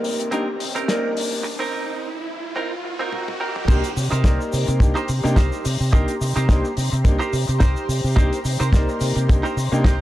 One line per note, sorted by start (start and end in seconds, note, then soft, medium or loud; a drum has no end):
0.00 0.17 C3 loud
0.00 0.29 A#3 medium
0.00 0.30 D#4 medium
0.00 1.41 D#4 medium
0.00 1.41 G4 medium
0.00 0.30 A#4 medium
0.00 1.41 C5 medium
0.00 0.29 D5 medium
0.00 1.41 A#5 medium
0.00 riser medium
0.04 open hi-hat loud
0.19 0.30 C3 medium
0.19 closed hi-hat medium
0.31 0.45 C2 loud
0.31 0.42 A#3 medium
0.31 0.47 C4 medium
0.31 0.42 D4 medium
0.31 0.47 D#4 medium
0.31 0.42 D#4 medium
0.31 0.43 G4 medium
0.31 0.48 A#4 medium
0.31 closed hi-hat medium
0.59 0.73 C3 medium
0.59 muted clean electric guitar stroke soft
0.59 open hi-hat loud
0.75 0.86 C3 medium
0.75 1.10 C4 medium
0.75 1.10 D#4 medium
0.75 1.10 A#4 loud
0.75 closed hi-hat soft
0.88 1.41 A#3 medium
0.88 1.42 D#4 medium
0.88 1.42 A#4 medium
0.88 1.41 D5 medium
0.88 snare loud
0.88 closed hi-hat medium
1.16 1.29 C3 medium
1.16 open hi-hat loud
1.32 1.42 C3 loud
1.43 muted clean electric guitar stroke loud
1.59 2.08 C4 medium
1.59 2.08 D#4 medium
1.59 2.08 A#4 loud
2.56 2.72 C4 medium
2.56 2.72 D#4 medium
2.56 2.72 A#4 medium
2.84 muted clean electric guitar stroke soft
2.99 3.34 C4 medium
2.99 3.34 D#4 medium
2.99 3.35 A#4 loud
3.12 high tom medium
3.28 high tom medium
3.40 3.63 C4 loud
3.40 3.64 D#4 medium
3.40 3.64 A#4 loud
3.56 mid tom medium
3.68 3.81 C2 loud
3.68 3.78 A#3 medium
3.68 3.78 D4 medium
3.68 3.90 D#4 loud
3.68 3.79 D#4 medium
3.68 3.90 G4 loud
3.68 3.79 G4 medium
3.68 10.01 G4 medium
3.68 3.90 A#4 medium
3.68 3.90 C5 loud
3.68 10.01 C5 medium
3.68 10.01 A#5 medium
3.68 10.01 C6 medium
3.68 kick loud
3.68 closed hi-hat medium
3.68 crash loud
3.68 shaker medium
3.84 closed hi-hat medium
3.84 shaker soft
3.97 4.09 C3 medium
3.97 open hi-hat loud
3.97 shaker loud
4.11 4.22 C3 medium
4.11 4.39 D#4 medium
4.11 4.40 G4 medium
4.11 4.40 A#4 medium
4.11 4.40 C5 medium
4.11 cross-stick medium
4.11 closed hi-hat medium
4.11 shaker soft
4.24 4.37 C2 loud
4.24 4.78 A#3 medium
4.24 4.78 D#4 medium
4.24 4.78 A#4 medium
4.24 4.78 D5 medium
4.24 kick loud
4.24 snare loud
4.24 closed hi-hat medium
4.24 shaker medium
4.41 shaker soft
4.53 4.66 C3 loud
4.53 open hi-hat loud
4.53 shaker medium
4.68 4.79 C3 medium
4.68 muted clean electric guitar stroke soft
4.68 closed hi-hat medium
4.68 shaker soft
4.80 4.93 C2 loud
4.80 4.97 A#3 medium
4.80 4.97 D4 medium
4.80 4.97 D#4 medium
4.80 4.97 G4 medium
4.80 kick loud
4.80 closed hi-hat medium
4.80 shaker medium
4.95 5.08 D#4 loud
4.95 5.09 G4 loud
4.95 5.09 A#4 medium
4.95 5.09 C5 loud
4.95 shaker soft
5.08 5.22 C3 medium
5.08 open hi-hat loud
5.08 shaker medium
5.24 5.35 C3 medium
5.24 5.37 A#3 loud
5.24 5.37 D4 medium
5.24 5.37 D#4 medium
5.24 5.38 G4 loud
5.24 muted clean electric guitar stroke soft
5.24 closed hi-hat medium
5.24 shaker medium
5.36 5.49 C2 medium
5.36 5.65 D#4 medium
5.36 5.65 G4 medium
5.36 5.65 A#4 medium
5.36 5.65 C5 medium
5.36 kick loud
5.36 snare loud
5.36 closed hi-hat medium
5.36 shaker medium
5.53 shaker soft
5.65 5.78 C3 medium
5.65 open hi-hat loud
5.65 shaker medium
5.80 5.91 C3 loud
5.80 shaker medium
5.93 6.06 C2 loud
5.93 6.09 A#3 medium
5.93 6.09 D4 medium
5.93 6.14 D#4 loud
5.93 6.09 D#4 medium
5.93 6.15 G4 loud
5.93 6.09 G4 loud
5.93 6.15 A#4 medium
5.93 6.15 C5 loud
5.93 kick loud
5.93 closed hi-hat medium
5.93 shaker medium
6.08 closed hi-hat medium
6.08 shaker soft
6.21 6.34 C3 medium
6.21 open hi-hat loud
6.21 shaker medium
6.36 6.47 C3 medium
6.36 6.64 D#4 medium
6.36 6.64 G4 medium
6.36 6.64 A#4 medium
6.36 6.65 C5 loud
6.36 cross-stick medium
6.36 closed hi-hat medium
6.36 shaker soft
6.49 6.62 C2 medium
6.49 6.65 A#3 medium
6.49 6.65 D4 medium
6.49 6.65 D#4 medium
6.49 6.65 G4 medium
6.49 kick loud
6.49 snare loud
6.49 closed hi-hat medium
6.49 shaker medium
6.65 shaker soft
6.77 6.90 C3 medium
6.77 open hi-hat loud
6.77 shaker medium
6.92 7.03 C3 medium
6.92 muted clean electric guitar stroke soft
6.92 closed hi-hat medium
6.92 shaker soft
7.04 7.18 C2 loud
7.04 7.15 A#3 medium
7.04 7.15 D4 medium
7.04 7.15 D#4 medium
7.04 7.15 G4 loud
7.04 kick loud
7.04 closed hi-hat medium
7.04 shaker medium
7.19 7.33 D#4 loud
7.19 7.33 G4 medium
7.19 7.33 A#4 loud
7.19 7.33 C5 loud
7.19 shaker soft
7.33 7.46 C3 medium
7.33 open hi-hat loud
7.33 shaker medium
7.48 7.59 C3 medium
7.48 muted clean electric guitar stroke soft
7.48 closed hi-hat medium
7.48 shaker soft
7.60 7.74 C2 medium
7.60 7.89 D#4 medium
7.60 7.89 G4 medium
7.60 7.89 A#4 medium
7.60 7.89 C5 loud
7.60 kick loud
7.60 snare loud
7.60 closed hi-hat medium
7.60 shaker medium
7.76 shaker soft
7.89 8.02 C3 medium
7.89 open hi-hat loud
7.89 shaker medium
8.04 8.15 C3 loud
8.04 shaker soft
8.16 8.30 C2 medium
8.16 8.27 A#3 medium
8.16 8.27 D4 medium
8.16 8.38 D#4 loud
8.16 8.27 D#4 medium
8.16 8.39 G4 loud
8.16 8.28 G4 medium
8.16 8.39 A#4 loud
8.16 8.39 C5 loud
8.16 kick loud
8.16 closed hi-hat medium
8.16 shaker medium
8.33 closed hi-hat medium
8.33 shaker soft
8.45 8.58 C3 medium
8.45 open hi-hat loud
8.45 shaker medium
8.60 8.71 C3 medium
8.60 8.88 D#4 medium
8.60 8.88 G4 medium
8.60 8.89 A#4 medium
8.60 8.89 C5 loud
8.60 cross-stick medium
8.60 closed hi-hat medium
8.60 shaker medium
8.73 8.86 C2 loud
8.73 9.26 A#3 medium
8.73 9.26 D#4 medium
8.73 9.27 A#4 medium
8.73 9.26 D5 medium
8.73 kick loud
8.73 snare loud
8.73 closed hi-hat medium
8.73 shaker medium
8.89 shaker soft
9.01 9.14 C3 loud
9.01 open hi-hat loud
9.01 shaker medium
9.16 9.27 C3 medium
9.16 muted clean electric guitar stroke soft
9.16 closed hi-hat medium
9.16 shaker soft
9.28 9.42 C2 loud
9.28 9.45 A#3 medium
9.28 9.45 D4 medium
9.28 9.45 D#4 medium
9.28 9.45 G4 medium
9.28 kick loud
9.28 closed hi-hat medium
9.28 shaker medium
9.43 9.57 D#4 loud
9.43 9.57 G4 medium
9.43 9.57 A#4 loud
9.43 9.57 C5 loud
9.43 shaker soft
9.57 9.70 C3 medium
9.57 open hi-hat loud
9.57 shaker medium
9.72 9.83 C3 medium
9.72 9.86 A#3 loud
9.72 9.86 D4 medium
9.72 9.86 D#4 medium
9.72 9.86 G4 loud
9.72 muted clean electric guitar stroke soft
9.72 closed hi-hat soft
9.72 shaker soft
9.84 9.98 C2 medium
9.84 10.01 D#4 medium
9.84 10.01 G4 medium
9.84 10.01 A#4 medium
9.84 10.01 C5 medium
9.84 kick loud
9.84 snare loud
9.84 closed hi-hat medium
9.84 shaker medium